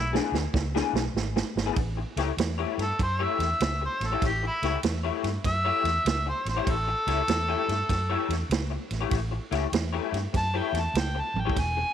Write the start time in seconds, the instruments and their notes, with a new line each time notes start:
Already playing: fingered electric bass B1, harmonica E4
0.13 clean electric guitar E3 B3 D4 G#4, snare
0.32 fingered electric bass D2, snare
0.54 fingered electric bass C#2, muted clean electric guitar stroke, kick, snare
0.75 clean electric guitar E3 B3 D4 G#4, snare
0.93 fingered electric bass B1, snare
1.14 fingered electric bass G#1, snare
1.36 muted clean electric guitar stroke, snare
1.55 fingered electric bass G#1, snare
1.66 clean electric guitar E3 B3 D4 G#4
1.76 fingered electric bass A1, kick, ride
1.97 muted clean electric guitar stroke
2.16 fingered electric bass C#2, clean electric guitar A3 E4 G4 C#5, snare, ride
2.37 fingered electric bass E2, muted clean electric guitar stroke, snare, ride
2.58 clean electric guitar A3 E4 G4 C#5
2.78 fingered electric bass G2, snare, ride
2.82 harmonica A4
2.99 fingered electric bass F#2, harmonica C5, muted clean electric guitar stroke, kick, ride
3.19 clean electric guitar A3 E4 G4 C#5, harmonica E5
3.39 fingered electric bass E2, snare, ride
3.60 fingered electric bass C#2, snare, ride
3.81 harmonica C5, muted clean electric guitar stroke
4.00 fingered electric bass A1, snare, ride
4.06 harmonica A4
4.12 clean electric guitar A3 E4 G4 C#5
4.22 fingered electric bass A1, kick, snare, ride
4.26 harmonica G4
4.43 muted clean electric guitar stroke
4.47 harmonica E4
4.62 fingered electric bass C#2, clean electric guitar A3 E4 G4 C#5, snare, ride
4.83 fingered electric bass E2, muted clean electric guitar stroke, snare, ride
5.03 clean electric guitar A3 E4 G4 C#5
5.24 fingered electric bass G2, snare, ride
5.44 fingered electric bass F#2, harmonica E5, muted clean electric guitar stroke, kick, snare, ride
5.65 clean electric guitar A3 E4 G4 C#5
5.84 fingered electric bass E2, snare, ride
6.05 fingered electric bass C#2, snare, ride
6.26 harmonica C5, muted clean electric guitar stroke
6.45 fingered electric bass A1, harmonica C5, snare, ride
6.56 clean electric guitar A3 E4 G4 C#5
6.67 fingered electric bass A1, harmonica A4, kick, ride
6.87 muted clean electric guitar stroke
7.07 fingered electric bass C#2, clean electric guitar A3 E4 G4 C#5, snare, ride
7.28 fingered electric bass E2, muted clean electric guitar stroke, snare, ride
7.48 clean electric guitar A3 E4 G4 C#5
7.68 fingered electric bass G2, snare, ride
7.89 fingered electric bass F#2, muted clean electric guitar stroke, kick, snare, ride
8.09 clean electric guitar A3 E4 G4 C#5
8.29 fingered electric bass E2, snare, ride
8.49 fingered electric bass C#2, snare, ride
8.70 muted clean electric guitar stroke
8.91 fingered electric bass A1, snare, ride
9.01 clean electric guitar A3 E4 G4 C#5
9.11 fingered electric bass A1, kick, snare, ride
9.31 muted clean electric guitar stroke
9.51 fingered electric bass C#2, clean electric guitar A3 E4 G4 C#5, snare, ride
9.72 fingered electric bass E2, muted clean electric guitar stroke, snare, ride
9.93 clean electric guitar A3 E4 G4 C#5
10.12 fingered electric bass G2, snare, ride
10.33 fingered electric bass F#2, muted clean electric guitar stroke, kick, snare, ride
10.38 harmonica A5
10.54 clean electric guitar A3 E4 G4 C#5, harmonica G5
10.73 fingered electric bass E2, snare, ride
10.80 harmonica A5
10.94 fingered electric bass C#2, snare, ride
10.99 harmonica G5
11.15 muted clean electric guitar stroke
11.21 harmonica A5
11.34 fingered electric bass A1, high tom
11.41 harmonica G5
11.45 clean electric guitar A3 E4 G4 C#5
11.50 kick
11.56 fingered electric bass E1, kick, snare, ride
11.60 harmonica G#5
11.77 muted clean electric guitar stroke